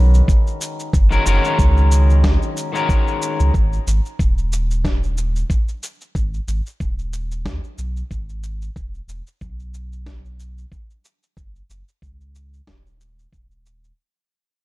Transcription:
Already playing: sub bass B1, clean electric guitar D#3 G#3 C#4 F#4 B4
0.14 shaker
0.28 kick, shaker
0.47 shaker
0.61 shaker
0.80 shaker
0.93 sub bass F#1, kick, shaker
1.10 clean electric guitar D#3 G#3 C#4 F#4 A#4, shaker
1.24 sub bass F#1, clean electric guitar D#3 G#3 C#4 F#4 A#4, shaker
1.44 shaker
1.59 sub bass C#2, kick, shaker
1.77 shaker
1.92 shaker
2.10 shaker
2.23 sub bass C#2, kick, snare, shaker
2.42 shaker
2.57 shaker
2.73 clean electric guitar D#3 G#3 C#4 F#4, shaker
2.77 clean electric guitar A#4
2.89 kick, shaker
3.08 shaker
3.22 shaker
3.40 sub bass C#2, shaker
3.54 sub bass G#1, kick, shaker
3.73 shaker
3.87 sub bass G#1, shaker
4.06 shaker
4.19 sub bass D#1, kick, shaker
4.38 shaker
4.52 shaker
4.71 shaker
4.85 kick, snare, shaker
5.03 shaker
5.18 shaker
5.36 shaker
5.50 kick, shaker
5.68 shaker
5.83 shaker
6.01 shaker
6.15 sub bass G#1, kick, shaker
6.34 shaker
6.48 sub bass G#1, shaker
6.66 shaker
6.80 sub bass D#1, kick, shaker
6.99 shaker
7.13 shaker
7.31 shaker
7.45 sub bass D#2, kick, snare, shaker
7.64 shaker
7.78 sub bass B1, shaker
7.97 shaker
8.11 sub bass G#1, kick, shaker
8.29 shaker
8.43 shaker
8.62 shaker
8.76 sub bass E1, kick, shaker
8.95 shaker
9.08 sub bass E1, shaker
9.27 shaker
9.41 sub bass B1, kick, shaker
9.59 shaker
9.74 shaker
9.92 shaker
10.06 kick, snare, shaker
10.25 shaker
10.40 shaker
10.58 shaker
10.72 kick, shaker
10.90 shaker
11.05 shaker
11.23 shaker
11.37 sub bass F#1, kick, shaker
11.56 shaker
11.70 sub bass F#1, shaker
11.88 shaker
12.02 sub bass C#2, kick, shaker
12.21 shaker
12.35 shaker
12.53 shaker
12.67 sub bass D#1, kick, snare, shaker
12.86 shaker
13.01 shaker
13.19 shaker
13.32 sub bass D#1, kick, shaker
13.51 shaker
13.66 shaker
13.84 shaker

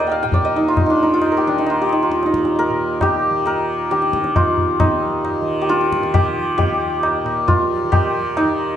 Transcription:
Already playing: tanpura D#2 A#2 D#3, santur F4 A#4 F5
0.00 santur D#5
0.07 santur G5, tabla na
0.11 santur F5
0.23 tanpura A#2, santur G5
0.32 santur D5, tabla tin, tabla ge
0.45 santur D#5
0.56 santur D#4
0.68 santur F4
0.77 tabla na, tabla ge
0.86 tanpura D#3, santur D4 D#4
1.03 santur D#4
1.14 santur F4
1.22 tabla na
1.32 santur A#4
1.37 santur G4
1.47 tanpura D#3, santur D4
1.58 santur D#4
1.67 santur F4, tabla na
1.82 santur G4
1.89 santur D#4, tabla na
2.03 santur F4
2.08 tanpura D#2, tabla te
2.23 santur D#4, tabla te
2.34 tabla ke
2.45 tabla te
2.56 santur A#4, tabla tin
2.69 tanpura A#2
3.01 santur G4, tabla na, tabla ge
3.31 tanpura D#3
3.46 santur A#4, tabla na
3.91 tanpura D#3, santur G4, tabla te
4.02 tabla te
4.13 tabla ke
4.24 tabla te
4.36 santur F4, tabla na, tabla ge
4.52 tanpura D#2
4.58 tabla ge
4.80 tanpura A#2, santur D#4, tabla na, tabla ge
5.25 tabla na
5.41 tanpura D#3
5.61 santur G4
5.69 santur F4, tabla te
5.81 tabla te
5.92 tabla ke
6.02 tanpura D#3, tabla te
6.14 santur G4, tabla tin, tabla ge
6.58 santur G4, tabla tin, tabla ge
6.63 tanpura D#2
7.03 tabla na
7.24 tanpura A#2, tabla na
7.48 santur F4, tabla tin, tabla ge
7.84 tanpura D#3
7.92 santur G4, tabla na, tabla ge
8.37 santur D#4, tabla na
8.45 tanpura D#3

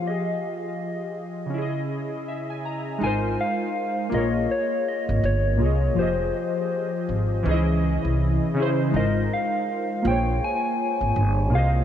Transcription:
Already playing: synth keys F3
0.02 synth keys F4
0.06 synth keys G4 G#4, soft synth lead D#5
0.13 synth keys D#5
1.46 synth keys C#3 C#4
1.54 synth keys E4
1.58 synth keys G#4 D#5
2.28 synth keys E5
2.50 synth keys G#5
2.65 synth keys A#5
2.98 upright bass G#1, synth keys G#3 D#4 F4
3.04 synth keys A#4 C5, soft synth lead G#5
3.41 soft synth lead F5
4.09 upright bass A#1, synth keys A#3 F4 G#4
4.14 synth keys A#4 C#5, soft synth lead D#5
4.51 soft synth lead C#5
4.88 soft synth lead D#5
5.09 upright bass G#1
5.23 upright bass G1, soft synth lead C#5
5.57 upright bass C2, synth keys A#3 F4
5.61 synth keys G#4 C#5 D#5
5.94 upright bass F1, synth keys F3 F4 G4
5.99 synth keys G#4 D#5, soft synth lead C5
7.09 upright bass G#1
7.43 upright bass C#2, synth keys E3 C#4 D#4
7.49 synth keys G#4 D#5
7.53 synth keys E4
8.05 upright bass C2
8.54 synth keys C#3 C#4 E4
8.60 synth keys G#4 C5
8.91 upright bass G#1, synth keys G#3 D#4
8.95 synth keys F4 A#4 C5, soft synth lead D#5
9.33 soft synth lead F5
10.02 upright bass A#1, synth keys A#3 F4 G#4
10.07 synth keys C5 C#5, soft synth lead G5
10.44 soft synth lead G#5
11.01 upright bass G#1
11.16 upright bass G1
11.50 upright bass C2, synth keys A#3 F4
11.54 synth keys G#4 C5 D#5, soft synth lead F5

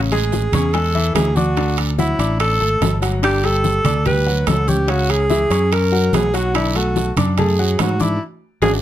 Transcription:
Already playing: fingered electric bass A1
0.12 upright piano G#3 G#4 G#5, alto saxophone G#4, high bongo, high conga, high timbale
0.32 high bongo, high conga, low timbale, short guiro
0.52 fingered electric bass E2, upright piano C#4 C#5 C#6, high conga, low conga, high timbale, short guiro
0.73 upright piano G#3 G#4 G#5, alto saxophone A4, high bongo, high conga, high timbale, long guiro
0.95 upright piano E3 E4 E5, high bongo, high conga
1.15 fingered electric bass D2, alto saxophone G#4, high bongo, low bongo, high conga, high timbale, low timbale, short guiro
1.36 upright piano D4 D5 D6, alto saxophone F#4, high bongo, high conga, short guiro
1.57 upright piano D3 D4 D5, high bongo, high conga, high timbale, long guiro
1.78 high bongo, high conga, high timbale
1.98 upright piano F#3 F#4 F#5, alto saxophone E4, high bongo, high conga, low timbale, short guiro
2.19 fingered electric bass A1, upright piano D4 D5 D6, high timbale, short guiro
2.40 alto saxophone A4, high bongo, high conga, high timbale, long guiro
2.60 fingered electric bass G#1, upright piano A3 A4 A5, high bongo, high conga
2.81 fingered electric bass G1, high bongo, low bongo, high conga, high timbale, low timbale, short guiro
3.02 upright piano F#3 F#4 F#5, high bongo, high timbale, short guiro
3.22 upright piano D3 D4 D5, alto saxophone G4, high bongo, high conga, high timbale, long guiro
3.44 upright piano G3 G4 G5, alto saxophone A4, high bongo, high conga, high timbale
3.64 high bongo, high conga, low timbale, short guiro
3.84 fingered electric bass D2, upright piano D4 D5 D6, high conga, low conga, high timbale, short guiro
4.05 upright piano G3 G4 G5, alto saxophone B4, high bongo, high conga, low conga, high timbale, long guiro
4.27 upright piano F#3 F#4 F#5, high bongo, high conga
4.47 fingered electric bass C#2, alto saxophone A4, high bongo, low bongo, high conga, high timbale, low timbale, short guiro
4.67 upright piano C#4 C#5 C#6, alto saxophone G4, high bongo, high conga, short guiro
4.88 upright piano C#3 C#4 C#5, alto saxophone F#4, high bongo, high conga, high timbale, long guiro
5.09 alto saxophone G#4, high bongo, high conga, high timbale
5.30 upright piano E3 E4 E5, high bongo, high conga, low timbale, short guiro
5.50 fingered electric bass F#2, upright piano C#4 C#5 C#6, high timbale, short guiro
5.71 alto saxophone A#4, high bongo, high conga, high timbale, long guiro
5.92 upright piano F#3 F#4 F#5, high bongo, high conga
6.13 fingered electric bass B1, alto saxophone G#4, high bongo, low bongo, high conga, high timbale, low timbale, short guiro
6.34 upright piano F#3 F#4 F#5, alto saxophone F#4, high bongo, high timbale, short guiro
6.54 upright piano D3 D4 D5, alto saxophone E4, high bongo, high conga, high timbale, long guiro
6.75 upright piano A3 A4 A5, alto saxophone F#4, high bongo, high conga, high timbale
6.96 high bongo, high conga, low timbale, short guiro
7.17 fingered electric bass F#2, upright piano D4 D5 D6, high conga, low conga, high timbale, short guiro
7.38 upright piano A3 A4 A5, alto saxophone G#4, high bongo, high conga, low conga, high timbale, long guiro
7.59 upright piano F#3 F#4 F#5, high bongo, high conga
7.79 fingered electric bass G#2, alto saxophone F#4, high bongo, low bongo, high conga, high timbale, low timbale, short guiro
8.00 upright piano D4 D5 D6, alto saxophone E4, high bongo, high conga, short guiro
8.62 fingered electric bass G#1, upright piano D4 F#4 G#4, alto saxophone G#4, low bongo, high conga, high timbale, long guiro

